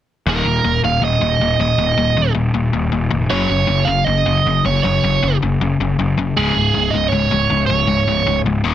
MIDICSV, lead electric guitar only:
0, 0, Header, 1, 2, 480
1, 0, Start_track
1, 0, Tempo, 381679
1, 326, Time_signature, 4, 2, 24, 8
1, 10995, End_track
2, 0, Start_track
2, 0, Title_t, "Lead electric guitar"
2, 0, Program_c, 0, 29
2, 368, Note_on_c, 0, 70, 88
2, 1017, Note_off_c, 0, 70, 0
2, 1063, Note_on_c, 0, 77, 93
2, 1301, Note_off_c, 0, 77, 0
2, 1314, Note_on_c, 0, 75, 93
2, 2006, Note_off_c, 0, 75, 0
2, 2021, Note_on_c, 0, 75, 95
2, 2921, Note_off_c, 0, 75, 0
2, 4153, Note_on_c, 0, 73, 94
2, 4841, Note_on_c, 0, 77, 89
2, 4898, Note_off_c, 0, 73, 0
2, 5086, Note_off_c, 0, 77, 0
2, 5086, Note_on_c, 0, 75, 93
2, 5845, Note_off_c, 0, 75, 0
2, 5855, Note_on_c, 0, 73, 94
2, 6063, Note_off_c, 0, 73, 0
2, 6078, Note_on_c, 0, 73, 77
2, 6749, Note_off_c, 0, 73, 0
2, 8013, Note_on_c, 0, 68, 87
2, 8684, Note_on_c, 0, 75, 88
2, 8750, Note_off_c, 0, 68, 0
2, 8905, Note_off_c, 0, 75, 0
2, 8905, Note_on_c, 0, 73, 90
2, 9623, Note_off_c, 0, 73, 0
2, 9638, Note_on_c, 0, 73, 88
2, 10573, Note_off_c, 0, 73, 0
2, 10995, End_track
0, 0, End_of_file